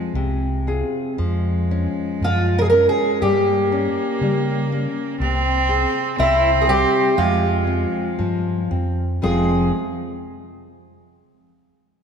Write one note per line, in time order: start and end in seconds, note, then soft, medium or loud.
0.00 0.12 F3 medium
0.00 0.61 G#3 medium
0.00 0.46 C4 soft
0.00 0.46 F4 soft
0.00 0.46 G#4 medium
0.14 0.81 C2 medium
0.14 1.15 C3 medium
0.67 1.08 C4 soft
0.67 1.08 F4 soft
0.67 1.09 G#4 medium
1.17 1.85 F2 medium
1.17 2.21 F3 medium
1.17 3.23 G#3 medium
1.71 2.20 C#4 medium
2.21 2.86 F#2 medium
2.21 2.71 F3 medium
2.21 2.58 F4 medium
2.58 2.69 G#4 medium
2.58 2.61 A#4 medium
2.70 3.20 C#4 medium
2.70 2.88 A#4 medium
2.89 3.21 G#4 medium
3.21 3.86 G2 loud
3.21 4.21 G3 medium
3.21 5.20 A#3 loud
3.21 4.67 G4 medium
3.72 4.20 C#4 medium
4.21 4.85 C#3 loud
4.21 4.70 G3 medium
4.72 5.19 C#4 medium
5.20 5.84 C2 loud
5.20 6.16 C3 medium
5.20 6.14 C4 loud
5.69 6.17 G#4 medium
6.18 6.83 C2 loud
6.18 7.14 C3 medium
6.18 7.20 C4 loud
6.18 6.49 E4 loud
6.62 6.68 G#4 medium
6.67 7.15 G3 medium
6.67 7.18 G4 loud
7.17 7.84 F2 loud
7.17 8.17 F3 medium
7.17 8.72 G#3 medium
7.17 8.67 F4 medium
7.67 8.17 C4 medium
8.19 8.67 G2 medium
8.19 8.69 F3 medium
8.71 9.19 F2 medium
8.71 9.21 C4 medium
9.22 9.70 F1 medium
9.22 9.69 F2 medium
9.22 9.70 C3 soft
9.22 9.70 F3 soft
9.22 9.70 G#3 soft
9.22 9.70 G#3 medium
9.22 9.70 C4 soft
9.22 9.70 F4 medium
9.22 9.70 G#4 medium